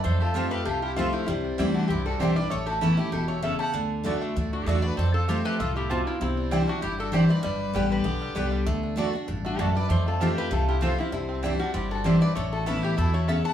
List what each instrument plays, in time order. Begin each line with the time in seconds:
0.04 steel-string acoustic guitar F2, upright bass F2, five-string banjo A3, fiddle A4, resonator guitar played with a steel bar C5
0.20 fiddle F4, five-string banjo G4, resonator guitar played with a steel bar A4
0.34 steel-string acoustic guitar F3 A3 C4 F4, mandolin C4 F4 C5 A5, fiddle C4, five-string banjo F4, resonator guitar played with a steel bar G4
0.51 five-string banjo A3, fiddle G4, resonator guitar played with a steel bar B4
0.65 upright bass C2, steel-string acoustic guitar C3, fiddle F4, five-string banjo G4, resonator guitar played with a steel bar A4
0.82 fiddle E4, five-string banjo F4, resonator guitar played with a steel bar G4
0.96 steel-string acoustic guitar F3 A3 C4 F4, five-string banjo A3, fiddle C4, mandolin C4 F4 C5 A5, resonator guitar played with a steel bar F4
1.13 fiddle C4, resonator guitar played with a steel bar E4, five-string banjo G4
1.26 upright bass C2, steel-string acoustic guitar C3, five-string banjo G3, fiddle C4, resonator guitar played with a steel bar E4
1.44 five-string banjo D4
1.58 upright bass D2, steel-string acoustic guitar E3 G3 D4 E4, five-string banjo G3, mandolin C4 E4 D5 G5
1.74 five-string banjo D3, fiddle D4, resonator guitar played with a steel bar F#4
1.88 upright bass C2, steel-string acoustic guitar G2, five-string banjo C4, fiddle E4, resonator guitar played with a steel bar G4
2.06 five-string banjo G3, fiddle F#4, resonator guitar played with a steel bar A4
2.19 upright bass B1, steel-string acoustic guitar E3 G3 D4 E4, mandolin C4 E4 D5 G5, five-string banjo D4, fiddle G4, resonator guitar played with a steel bar C5
2.36 five-string banjo G3, steel-string acoustic guitar D4 E4, fiddle B4, resonator guitar played with a steel bar D5
2.50 upright bass A1, steel-string acoustic guitar A2, five-string banjo A3, fiddle A4, resonator guitar played with a steel bar C#5
2.66 fiddle F#4, five-string banjo G4, resonator guitar played with a steel bar A4
2.81 steel-string acoustic guitar E3 B3 C#4 E4, mandolin C#4 A4 E5 B5, five-string banjo E4, fiddle E4, resonator guitar played with a steel bar B4
2.97 five-string banjo A3, steel-string acoustic guitar C#4 E4, fiddle E4, resonator guitar played with a steel bar G4
3.12 upright bass E1, steel-string acoustic guitar B2, fiddle E4, five-string banjo G4, resonator guitar played with a steel bar A4
3.28 five-string banjo E4, fiddle A4, resonator guitar played with a steel bar C#5
3.42 steel-string acoustic guitar C#3, five-string banjo A3, mandolin C#4 A4 E5 B5, fiddle C#5, resonator guitar played with a steel bar E5
3.59 five-string banjo G4, fiddle F#5, resonator guitar played with a steel bar A5
3.74 upright bass D2, steel-string acoustic guitar D3, five-string banjo D4
4.04 steel-string acoustic guitar D3 A3 D4 F#4, five-string banjo D3, mandolin A3 F#4 D5 A5
4.22 five-string banjo A3
4.36 upright bass D2, steel-string acoustic guitar A2, five-string banjo D4
4.53 five-string banjo D4, fiddle D4, resonator guitar played with a steel bar F#4
4.66 upright bass E2, steel-string acoustic guitar D3 A3 D4 F#4, mandolin A3 F#4 D5 A5, five-string banjo D4, fiddle F#4, resonator guitar played with a steel bar A4
4.82 five-string banjo D4, steel-string acoustic guitar D4 F#4, fiddle B4, resonator guitar played with a steel bar D5
4.97 upright bass F2, steel-string acoustic guitar F2, five-string banjo C4, fiddle A4, resonator guitar played with a steel bar C5
5.14 fiddle F4, resonator guitar played with a steel bar A4
5.28 steel-string acoustic guitar F3 A3 C4 F4, mandolin C4 F4 C5 A5, fiddle C4, five-string banjo F4, resonator guitar played with a steel bar G4
5.45 five-string banjo A3, fiddle G4, resonator guitar played with a steel bar B4
5.60 upright bass C2, steel-string acoustic guitar A2, five-string banjo F4, fiddle F4, resonator guitar played with a steel bar A4
5.76 five-string banjo A3, fiddle E4, resonator guitar played with a steel bar G4
5.89 steel-string acoustic guitar B2, mandolin C4 F4 C5 A5, five-string banjo C4, fiddle C4, resonator guitar played with a steel bar F4
6.07 fiddle C4, resonator guitar played with a steel bar E4, five-string banjo F4
6.21 upright bass C2, steel-string acoustic guitar C3, fiddle C4, five-string banjo C4, resonator guitar played with a steel bar E4
6.37 five-string banjo D4
6.51 five-string banjo D3, steel-string acoustic guitar E3 G3 D4 E4, mandolin C4 E4 D5 G5
6.67 five-string banjo G3, fiddle D4, steel-string acoustic guitar D4 E4, resonator guitar played with a steel bar F#4
6.82 upright bass G1, steel-string acoustic guitar G2, fiddle E4, five-string banjo G4, resonator guitar played with a steel bar G4
6.99 five-string banjo D4, fiddle F#4, resonator guitar played with a steel bar A4
7.12 steel-string acoustic guitar E3 G3 D4 E4, mandolin C4 E4 D5 G5, five-string banjo G4, fiddle G4, resonator guitar played with a steel bar C5
7.29 five-string banjo C4, steel-string acoustic guitar D4 E4, fiddle B4, resonator guitar played with a steel bar D5
7.43 upright bass G1, steel-string acoustic guitar G2, five-string banjo G3, fiddle B4, resonator guitar played with a steel bar D5
7.73 upright bass A1, steel-string acoustic guitar D3 G3 B3 G4, five-string banjo G3, mandolin B3 G4 D5 G5
7.91 five-string banjo D3, fiddle G4, resonator guitar played with a steel bar B4
8.04 upright bass B1, steel-string acoustic guitar D3, five-string banjo B3
8.22 five-string banjo G3
8.35 upright bass C2, steel-string acoustic guitar D3 G3 B3 G4, mandolin B3 G4 D5 G5, five-string banjo D4
8.52 five-string banjo G3
8.66 upright bass D2, steel-string acoustic guitar D3, five-string banjo A3
8.83 five-string banjo D4
8.96 steel-string acoustic guitar D3 A3 D4 F#4, mandolin A3 F#4 D5 A5, five-string banjo D4
9.13 five-string banjo D4, steel-string acoustic guitar D4 F#4
9.28 upright bass A1, steel-string acoustic guitar G2, five-string banjo D4
9.45 five-string banjo A3, fiddle D4, resonator guitar played with a steel bar F#4
9.59 steel-string acoustic guitar F#2, mandolin A3 F#4 D5 A5, five-string banjo D4, fiddle F#4, resonator guitar played with a steel bar A4
9.75 five-string banjo D4, fiddle B4, resonator guitar played with a steel bar D5
9.89 upright bass F2, steel-string acoustic guitar F2, five-string banjo A3, fiddle A4, resonator guitar played with a steel bar C5
10.06 five-string banjo C4, fiddle F4, resonator guitar played with a steel bar A4
10.20 steel-string acoustic guitar F3 A3 C4 F4, mandolin C4 F4 C5 A5, fiddle C4, five-string banjo F4, resonator guitar played with a steel bar G4
10.36 fiddle G4, five-string banjo G4, resonator guitar played with a steel bar B4
10.51 upright bass C2, steel-string acoustic guitar C3, five-string banjo A3, fiddle F4, resonator guitar played with a steel bar A4
10.68 fiddle E4, five-string banjo F4, resonator guitar played with a steel bar G4
10.81 steel-string acoustic guitar F3 A3 C4 F4, mandolin C4 F4 C5 A5, fiddle C4, resonator guitar played with a steel bar F4, five-string banjo G4
10.98 five-string banjo C4, fiddle C4, steel-string acoustic guitar C4 F4, resonator guitar played with a steel bar E4
11.12 upright bass C2, steel-string acoustic guitar C3, five-string banjo D3, fiddle C4, resonator guitar played with a steel bar E4
11.29 five-string banjo C4
11.42 steel-string acoustic guitar E3 G3 D4 E4, mandolin C4 E4 D5 G5, five-string banjo D4
11.59 five-string banjo G3, fiddle D4, steel-string acoustic guitar E4, resonator guitar played with a steel bar F#4
11.74 upright bass G1, steel-string acoustic guitar G2, five-string banjo C4, fiddle E4, resonator guitar played with a steel bar G4
11.91 five-string banjo D4, fiddle F#4, resonator guitar played with a steel bar A4
12.04 steel-string acoustic guitar E3 G3 D4 E4, five-string banjo G3, mandolin C4 E4 D5 G5, fiddle G4, resonator guitar played with a steel bar C5
12.21 five-string banjo C4, steel-string acoustic guitar D4 E4, fiddle B4, resonator guitar played with a steel bar D5
12.35 upright bass A1, steel-string acoustic guitar A2, five-string banjo A3, fiddle A4, resonator guitar played with a steel bar C#5
12.52 five-string banjo E4, fiddle F#4, resonator guitar played with a steel bar A4
12.66 steel-string acoustic guitar E3 B3 C#4 E4, five-string banjo A3, mandolin C#4 A4 E5 B5, fiddle E4, resonator guitar played with a steel bar B4
12.83 fiddle E4, five-string banjo G4, resonator guitar played with a steel bar G4
12.97 upright bass E2, steel-string acoustic guitar B2, five-string banjo E4, fiddle E4, resonator guitar played with a steel bar A4
13.14 five-string banjo A3, fiddle A4, resonator guitar played with a steel bar C#5
13.27 steel-string acoustic guitar C#3, five-string banjo B3, mandolin C#4 A4 E5 B5, fiddle C#5, resonator guitar played with a steel bar E5
13.44 five-string banjo E4, fiddle F#5, resonator guitar played with a steel bar A5